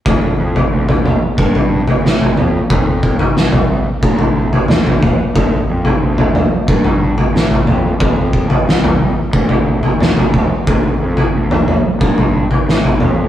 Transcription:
<<
  \new Staff \with { instrumentName = "Fingered electric bass" } { \clef bass \time 4/4 \key d \minor \tempo 4 = 90 d,8 f,8 d,4 g,4 a,8 f,8 | f,4 c,4 d,4 d,4 | d,8 f,8 d,4 g,4 a,8 f,8 | f,4 c,4 d,4 d,4 |
d,8 f,8 d,4 g,4 a,8 f,8 | }
  \new DrumStaff \with { instrumentName = "Drums" } \drummode { \time 4/4 <bd tomfh>8. tomfh16 r16 <tomfh toml>16 toml8 bd16 tomfh8 tomfh16 sn16 tomfh16 toml8 | <bd tomfh>8 bd16 tomfh16 sn16 <tomfh toml>8. bd16 tomfh8 tomfh16 <sn toml>16 tomfh16 <bd toml>8 | <bd tomfh>8. tomfh16 r16 <tomfh toml>16 toml8 bd16 tomfh8 tomfh16 sn16 tomfh16 toml8 | <bd tomfh>8 bd16 tomfh16 sn16 <tomfh toml>8. bd16 tomfh8 tomfh16 <sn toml>16 tomfh16 <bd toml>8 |
<bd tomfh>8. tomfh16 r16 <tomfh toml>16 toml8 bd16 tomfh8 tomfh16 sn16 tomfh16 toml8 | }
>>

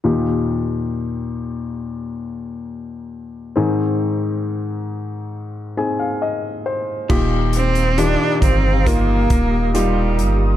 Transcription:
<<
  \new Staff \with { instrumentName = "Ambient pad" } { \time 4/4 \key ees \major \tempo 4 = 68 r1 | r1 | <g' f'' bes'' ees'''>1 | }
  \new Staff \with { instrumentName = "Grand piano" } { \time 4/4 \key ees \major << { r1 | r2 r8 aes''16 f''16 ees''8 c''8 | r1 | } \\ { <ees' f' g'>1 | <c' ees' aes'>2~ <c' ees' aes'>8 <c' ees' aes'>4. | <ees' f' g'>4 <ees f' g'>4 <ees' f' bes'>4 <ees' f' g'>4 | } >> }
  \new Staff \with { instrumentName = "Grand piano" } { \clef bass \time 4/4 \key ees \major <ees, bes,>1 | <aes, ees>1 | bes,4. r2 r8 | }
  \new Staff \with { instrumentName = "Clean electric guitar" } { \time 4/4 \key ees \major r1 | r1 | ees4 ees'4 <bes ees' f'>4 <bes ees' f'>4 | }
  \new Staff \with { instrumentName = "Cello" } { \time 4/4 \key ees \major r1 | r1 | r8 c'8 d'8 c'8 bes4 g8. r16 | }
  \new Staff \with { instrumentName = "Sub bass" } { \clef bass \time 4/4 \key ees \major r1 | r1 | ees,,4~ ees,,16 r16 g,,4 ees,,4 g,,8 | }
  \new DrumStaff \with { instrumentName = "Drums" } \drummode { \time 4/4 r4 r4 r4 r4 | r4 r4 r4 r4 | <cymc bd>8 hh16 hh16 hh8 <hh bd>8 <hh bd>8 <hh bd>8 hh8 hh8 | }
>>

